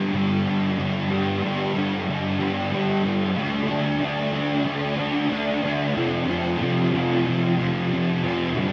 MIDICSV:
0, 0, Header, 1, 2, 480
1, 0, Start_track
1, 0, Tempo, 647948
1, 582, Time_signature, 4, 2, 24, 8
1, 6463, End_track
2, 0, Start_track
2, 0, Title_t, "Distorted electric guitar"
2, 0, Program_c, 0, 30
2, 0, Note_on_c, 0, 43, 97
2, 0, Note_on_c, 0, 50, 64
2, 0, Note_on_c, 0, 55, 77
2, 85, Note_off_c, 0, 43, 0
2, 94, Note_on_c, 0, 43, 75
2, 101, Note_off_c, 0, 50, 0
2, 110, Note_on_c, 0, 50, 75
2, 115, Note_off_c, 0, 55, 0
2, 124, Note_on_c, 0, 55, 81
2, 327, Note_off_c, 0, 55, 0
2, 336, Note_on_c, 0, 55, 72
2, 356, Note_off_c, 0, 50, 0
2, 365, Note_on_c, 0, 50, 65
2, 568, Note_off_c, 0, 43, 0
2, 576, Note_on_c, 0, 43, 84
2, 582, Note_off_c, 0, 50, 0
2, 591, Note_on_c, 0, 50, 103
2, 594, Note_off_c, 0, 55, 0
2, 603, Note_on_c, 0, 55, 94
2, 806, Note_off_c, 0, 55, 0
2, 815, Note_on_c, 0, 55, 74
2, 837, Note_off_c, 0, 50, 0
2, 845, Note_on_c, 0, 50, 68
2, 1047, Note_off_c, 0, 43, 0
2, 1056, Note_on_c, 0, 43, 79
2, 1062, Note_off_c, 0, 50, 0
2, 1071, Note_on_c, 0, 50, 80
2, 1072, Note_off_c, 0, 55, 0
2, 1081, Note_on_c, 0, 55, 91
2, 1280, Note_off_c, 0, 55, 0
2, 1289, Note_on_c, 0, 55, 74
2, 1305, Note_off_c, 0, 50, 0
2, 1314, Note_on_c, 0, 50, 60
2, 1526, Note_off_c, 0, 43, 0
2, 1535, Note_on_c, 0, 43, 83
2, 1541, Note_off_c, 0, 50, 0
2, 1550, Note_off_c, 0, 55, 0
2, 1550, Note_on_c, 0, 50, 103
2, 1559, Note_on_c, 0, 55, 86
2, 1763, Note_off_c, 0, 55, 0
2, 1772, Note_on_c, 0, 55, 74
2, 1790, Note_off_c, 0, 50, 0
2, 1799, Note_on_c, 0, 50, 70
2, 2007, Note_off_c, 0, 43, 0
2, 2016, Note_on_c, 0, 43, 74
2, 2020, Note_off_c, 0, 50, 0
2, 2028, Note_off_c, 0, 55, 0
2, 2029, Note_on_c, 0, 50, 78
2, 2037, Note_on_c, 0, 55, 84
2, 2245, Note_off_c, 0, 55, 0
2, 2254, Note_on_c, 0, 55, 75
2, 2272, Note_off_c, 0, 50, 0
2, 2281, Note_on_c, 0, 50, 53
2, 2475, Note_off_c, 0, 50, 0
2, 2483, Note_off_c, 0, 55, 0
2, 2483, Note_on_c, 0, 50, 97
2, 2484, Note_off_c, 0, 43, 0
2, 2505, Note_on_c, 0, 57, 101
2, 2514, Note_on_c, 0, 62, 107
2, 2716, Note_off_c, 0, 62, 0
2, 2725, Note_on_c, 0, 62, 82
2, 2743, Note_off_c, 0, 57, 0
2, 2746, Note_on_c, 0, 57, 62
2, 2954, Note_off_c, 0, 50, 0
2, 2963, Note_on_c, 0, 50, 81
2, 2977, Note_off_c, 0, 57, 0
2, 2980, Note_on_c, 0, 57, 75
2, 2984, Note_off_c, 0, 62, 0
2, 2993, Note_on_c, 0, 62, 82
2, 3193, Note_off_c, 0, 62, 0
2, 3201, Note_on_c, 0, 62, 78
2, 3221, Note_off_c, 0, 57, 0
2, 3224, Note_on_c, 0, 57, 62
2, 3430, Note_off_c, 0, 50, 0
2, 3439, Note_on_c, 0, 50, 95
2, 3452, Note_off_c, 0, 57, 0
2, 3455, Note_on_c, 0, 57, 90
2, 3456, Note_off_c, 0, 62, 0
2, 3465, Note_on_c, 0, 62, 89
2, 3670, Note_off_c, 0, 62, 0
2, 3679, Note_on_c, 0, 62, 74
2, 3702, Note_off_c, 0, 57, 0
2, 3705, Note_on_c, 0, 57, 60
2, 3911, Note_off_c, 0, 50, 0
2, 3919, Note_on_c, 0, 50, 85
2, 3933, Note_off_c, 0, 57, 0
2, 3936, Note_off_c, 0, 62, 0
2, 3936, Note_on_c, 0, 57, 90
2, 3944, Note_on_c, 0, 62, 79
2, 4158, Note_off_c, 0, 62, 0
2, 4167, Note_on_c, 0, 62, 74
2, 4187, Note_off_c, 0, 57, 0
2, 4190, Note_on_c, 0, 57, 55
2, 4396, Note_off_c, 0, 50, 0
2, 4399, Note_off_c, 0, 62, 0
2, 4404, Note_on_c, 0, 41, 94
2, 4414, Note_on_c, 0, 48, 105
2, 4421, Note_off_c, 0, 57, 0
2, 4424, Note_on_c, 0, 53, 113
2, 4633, Note_off_c, 0, 53, 0
2, 4642, Note_on_c, 0, 53, 72
2, 4657, Note_off_c, 0, 48, 0
2, 4666, Note_on_c, 0, 48, 60
2, 4869, Note_off_c, 0, 41, 0
2, 4878, Note_on_c, 0, 41, 78
2, 4887, Note_off_c, 0, 48, 0
2, 4896, Note_on_c, 0, 48, 87
2, 4897, Note_off_c, 0, 53, 0
2, 4906, Note_on_c, 0, 53, 80
2, 5121, Note_off_c, 0, 53, 0
2, 5130, Note_on_c, 0, 53, 83
2, 5148, Note_off_c, 0, 48, 0
2, 5156, Note_on_c, 0, 48, 61
2, 5363, Note_off_c, 0, 41, 0
2, 5372, Note_on_c, 0, 41, 73
2, 5377, Note_off_c, 0, 48, 0
2, 5386, Note_on_c, 0, 48, 93
2, 5389, Note_off_c, 0, 53, 0
2, 5398, Note_on_c, 0, 53, 89
2, 5605, Note_off_c, 0, 53, 0
2, 5614, Note_on_c, 0, 53, 79
2, 5632, Note_off_c, 0, 48, 0
2, 5641, Note_on_c, 0, 48, 70
2, 5847, Note_off_c, 0, 41, 0
2, 5856, Note_on_c, 0, 41, 73
2, 5860, Note_off_c, 0, 48, 0
2, 5869, Note_on_c, 0, 48, 78
2, 5872, Note_off_c, 0, 53, 0
2, 5881, Note_on_c, 0, 53, 85
2, 6083, Note_off_c, 0, 53, 0
2, 6092, Note_on_c, 0, 53, 69
2, 6111, Note_off_c, 0, 48, 0
2, 6120, Note_on_c, 0, 48, 56
2, 6323, Note_off_c, 0, 53, 0
2, 6326, Note_off_c, 0, 41, 0
2, 6331, Note_on_c, 0, 43, 82
2, 6337, Note_off_c, 0, 48, 0
2, 6353, Note_on_c, 0, 50, 93
2, 6358, Note_on_c, 0, 55, 99
2, 6463, Note_off_c, 0, 43, 0
2, 6463, Note_off_c, 0, 50, 0
2, 6463, Note_off_c, 0, 55, 0
2, 6463, End_track
0, 0, End_of_file